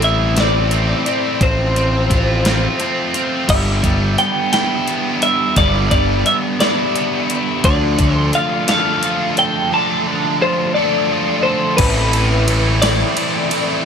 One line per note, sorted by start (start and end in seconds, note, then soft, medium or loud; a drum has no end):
0.00 0.93 A1 medium
0.00 1.40 A2 medium
0.00 0.70 E3 medium
0.00 0.38 A3 medium
0.00 0.36 C4 medium
0.00 1.41 E4 medium
0.00 closed hi-hat medium
0.04 0.37 C4 medium
0.04 0.35 E4 medium
0.04 0.39 E5 medium
0.36 0.71 A3 medium
0.36 0.71 C4 medium
0.36 0.72 C4 medium
0.36 0.73 E4 medium
0.36 snare loud
0.36 closed hi-hat medium
0.40 1.39 D5 medium
0.71 1.39 E3 medium
0.71 1.08 A3 medium
0.71 1.06 C4 medium
0.71 1.07 C4 medium
0.71 1.05 E4 medium
0.71 closed hi-hat medium
1.06 1.41 A3 medium
1.06 1.41 C4 medium
1.06 1.40 C4 medium
1.06 1.39 E4 medium
1.06 closed hi-hat medium
1.40 2.66 A1 medium
1.40 2.10 A2 medium
1.40 2.10 F3 medium
1.40 1.78 A3 medium
1.40 1.75 C4 medium
1.40 1.76 C4 medium
1.40 1.75 F4 loud
1.40 3.12 C5 medium
1.40 kick loud
1.40 closed hi-hat medium
1.76 2.11 A3 medium
1.76 2.45 C4 medium
1.76 2.12 C4 medium
1.76 2.13 F4 medium
1.76 closed hi-hat medium
2.10 2.79 F3 medium
2.10 2.48 A3 medium
2.10 2.46 C4 medium
2.10 3.50 F4 medium
2.10 2.44 F4 medium
2.10 kick medium
2.10 closed hi-hat medium
2.45 2.80 A3 medium
2.45 2.80 C4 medium
2.45 2.82 C4 medium
2.45 2.82 F4 medium
2.45 snare loud
2.45 closed hi-hat medium
2.80 3.48 F3 medium
2.80 3.17 A3 medium
2.80 3.14 C4 medium
2.80 3.15 C4 medium
2.80 closed hi-hat medium
2.84 3.14 F4 medium
3.14 3.49 A3 medium
3.14 3.50 C4 medium
3.14 3.48 C4 medium
3.14 3.47 F4 medium
3.14 closed hi-hat medium
3.49 3.80 G1 loud
3.49 4.56 G3 medium
3.49 3.84 G3 medium
3.49 4.55 B3 medium
3.49 4.53 D4 loud
3.49 4.18 E5 medium
3.49 kick loud
3.49 closed hi-hat medium
3.49 crash medium
3.84 4.15 G1 medium
3.84 5.56 G3 medium
3.84 kick medium
3.84 closed hi-hat medium
4.18 4.86 B3 medium
4.18 4.51 G5 medium
4.18 closed hi-hat medium
4.53 5.56 G3 medium
4.53 5.56 B3 medium
4.53 5.59 D4 medium
4.53 5.21 E4 medium
4.53 5.22 G5 medium
4.53 snare loud
4.53 closed hi-hat medium
4.88 6.26 B3 medium
4.88 closed hi-hat medium
5.22 6.60 E4 medium
5.22 5.57 E5 medium
5.22 closed hi-hat medium
5.56 5.88 G1 loud
5.56 5.91 G3 medium
5.56 6.59 G3 medium
5.56 6.60 B3 medium
5.56 6.60 D4 loud
5.56 5.90 D5 medium
5.56 kick loud
5.56 closed hi-hat medium
5.91 6.23 G1 medium
5.91 7.64 G3 medium
5.91 6.26 D5 medium
5.91 kick medium
5.91 closed hi-hat medium
6.26 6.94 B3 medium
6.26 6.36 E5 medium
6.26 closed hi-hat medium
6.60 7.63 G3 medium
6.60 7.63 B3 medium
6.60 7.66 D4 medium
6.60 7.29 E4 medium
6.60 7.35 D5 medium
6.60 snare loud
6.60 closed hi-hat medium
6.96 7.65 B3 medium
6.96 closed hi-hat medium
7.30 7.65 E4 medium
7.30 closed hi-hat medium
7.64 7.96 D2 loud
7.64 7.99 D3 medium
7.64 8.70 F3 medium
7.64 8.68 A3 medium
7.64 8.67 D4 medium
7.64 8.14 D5 medium
7.64 kick loud
7.64 closed hi-hat medium
7.99 8.30 D2 medium
7.99 9.72 D3 medium
7.99 kick medium
7.99 closed hi-hat medium
8.14 8.30 C5 medium
8.33 9.02 F4 medium
8.33 8.68 F5 medium
8.33 closed hi-hat medium
8.68 9.70 F3 medium
8.68 9.72 A3 medium
8.68 9.70 D4 medium
8.68 9.37 A4 medium
8.68 9.34 F5 medium
8.68 snare loud
8.68 closed hi-hat medium
9.03 10.41 F4 medium
9.03 closed hi-hat medium
9.37 10.75 A4 medium
9.37 9.73 G5 loud
9.37 closed hi-hat medium
9.71 10.06 D3 medium
9.71 10.73 F3 medium
9.71 10.74 A3 medium
9.71 10.74 D4 loud
9.71 11.07 A5 loud
10.08 11.79 D3 medium
10.42 11.10 F4 medium
10.42 10.74 C5 medium
10.74 11.77 F3 medium
10.74 11.77 A3 medium
10.74 11.77 D4 medium
10.74 11.44 A4 medium
10.74 11.43 D5 medium
11.11 11.79 F4 medium
11.43 11.79 A4 medium
11.43 11.76 C5 medium
11.77 13.03 A1 loud
11.77 12.48 A2 medium
11.77 12.46 E3 medium
11.77 12.47 E3 loud
11.77 12.16 A3 medium
11.77 12.15 C4 loud
11.77 12.13 E4 medium
11.77 12.12 A4 loud
11.77 12.77 B4 medium
11.77 kick loud
11.77 crash loud
11.77 ride medium
11.81 12.15 C4 loud
11.81 12.13 E4 loud
12.13 12.48 A3 medium
12.13 12.47 C4 medium
12.13 12.49 C4 medium
12.13 12.51 E4 medium
12.13 12.48 E4 medium
12.13 12.48 A4 medium
12.13 ride medium
12.47 12.85 E3 medium
12.47 13.16 E3 medium
12.47 12.84 A3 medium
12.47 12.83 C4 medium
12.47 12.83 E4 medium
12.47 12.81 A4 medium
12.47 ride medium
12.51 12.81 E4 medium
12.82 13.85 E3 medium
12.82 13.17 A3 medium
12.82 13.18 C4 medium
12.82 13.52 C4 medium
12.82 13.20 E4 medium
12.82 13.52 E4 medium
12.82 13.50 A4 medium
12.82 13.82 D5 medium
12.82 snare loud
12.82 ride loud
13.16 13.85 E3 medium
13.16 13.53 A3 medium
13.16 13.51 C4 medium
13.16 13.50 E4 medium
13.16 ride medium
13.50 13.85 A3 medium
13.50 13.84 C4 medium
13.50 13.85 C4 medium
13.50 13.85 E4 medium
13.50 13.84 A4 medium
13.50 ride medium